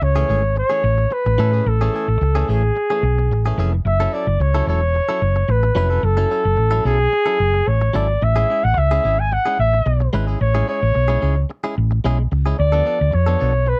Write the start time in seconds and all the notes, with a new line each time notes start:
0.02 C#2 C#5, muted clean electric guitar stroke
0.16 E3 A3 C#4 G#4
0.28 G#1 E3 A3 C#4 G#4
0.43 muted clean electric guitar stroke
0.56 C#5, muted clean electric guitar stroke
0.70 E3 A3 C#4 G#4
0.83 A1, muted clean electric guitar stroke
0.98 muted clean electric guitar stroke
1.11 B4, muted clean electric guitar stroke
1.26 A1, muted clean electric guitar stroke
1.38 A2 E3 A3 C#4 A4
1.52 E3 A3 C#4 G#4
1.66 A1 A4, muted clean electric guitar stroke
1.81 E3 A3 C#4 G#4
1.94 E3 A3 C#4 G#4
2.08 A1, muted clean electric guitar stroke
2.21 C#2, muted clean electric guitar stroke
2.35 E3 A3 C#4 G#4
2.48 A1 E3 A3 C#4 G#4
2.76 muted clean electric guitar stroke
2.90 E3 A3 C#4 G#4
3.03 B1, muted clean electric guitar stroke
3.18 muted clean electric guitar stroke
3.30 A1, muted clean electric guitar stroke
3.46 E3 A3 C#4 G#4
3.58 F1 E3 A3 C#4 G#4
3.73 muted clean electric guitar stroke
3.85 F#1 E5, muted clean electric guitar stroke
4.00 F#3 C#4 E4 A4
4.13 F#3 C#4 E4 A4 D5
4.27 F#1
4.40 C#2 C#5, muted clean electric guitar stroke
4.54 F#3 C#4 E4 A4
4.67 E1 F#3 C#4 E4 A4 C#5
4.82 muted clean electric guitar stroke
4.94 muted clean electric guitar stroke
5.09 F#3 C#4 E4 A4
5.22 F#1, muted clean electric guitar stroke
5.36 muted clean electric guitar stroke
5.48 A1 B4, muted clean electric guitar stroke
5.63 muted clean electric guitar stroke
5.75 F1 F#3 C#4 E4 B4
5.90 F#3 C#4 E4 A4
6.03 F#1 A4, muted clean electric guitar stroke
6.17 F#3 C#4 E4 A4
6.30 F#3 C#4 E4 A4
6.45 F#1, muted clean electric guitar stroke
6.57 A1, muted clean electric guitar stroke
6.71 F#3 C#4 E4 A4
6.85 B1 F#3 C#4 E4 G#4 A4
6.99 muted clean electric guitar stroke
7.12 muted clean electric guitar stroke
7.26 F#3 C#4 E4 A4
7.39 F#1, muted clean electric guitar stroke
7.54 muted clean electric guitar stroke
7.67 A1 C#5
7.81 muted clean electric guitar stroke
7.93 G#1 F#3 C#4 E4 A4 D5
8.09 muted clean electric guitar stroke
8.22 A1 E5, muted clean electric guitar stroke
8.36 G#3 C#4 E4 G#4
8.50 G#3 C#4 E4 G#4
8.64 A1 F#5
8.77 C#2 E5, muted clean electric guitar stroke
8.91 G#3 C#4 E4 G#4
9.03 G#1 G#3 C#4 E4 G#4
9.19 G#5, muted clean electric guitar stroke
9.32 F#5, muted clean electric guitar stroke
9.45 G#3 C#4 E4 G#4
9.59 A1 E5, muted clean electric guitar stroke
9.73 muted clean electric guitar stroke
9.86 B1, muted clean electric guitar stroke
10.00 muted clean electric guitar stroke
10.13 G#1 G#3 C#4 E4 B4
10.27 G#3 C#4 E4 G#4
10.40 A1 C#5, muted clean electric guitar stroke
10.55 G#3 C#4 E4 G#4
10.67 G#3 C#4 E4 G#4 C#5
10.82 A1, muted clean electric guitar stroke
10.95 B1, muted clean electric guitar stroke
11.08 G#3 C#4 E4 G#4
11.20 C#2 G#3 C#4 E4 G#4
11.50 muted clean electric guitar stroke
11.64 G#3 C#4 E4 G#4
11.76 A1, muted clean electric guitar stroke
11.91 muted clean electric guitar stroke
12.04 B1 G#3 C#4 E4 G#4
12.19 muted clean electric guitar stroke
12.32 C#2, muted clean electric guitar stroke
12.46 G#3 C#4 E4 G#4
12.59 D2 D5
12.72 F3 B3 D4 A4
12.85 F3 B3 D4 A4
13.00 D2, muted clean electric guitar stroke
13.12 F2 C#5, muted clean electric guitar stroke
13.26 F3 B3 D4 A4
13.39 B1 F3 B3 D4 A4
13.54 muted clean electric guitar stroke
13.66 B4, muted clean electric guitar stroke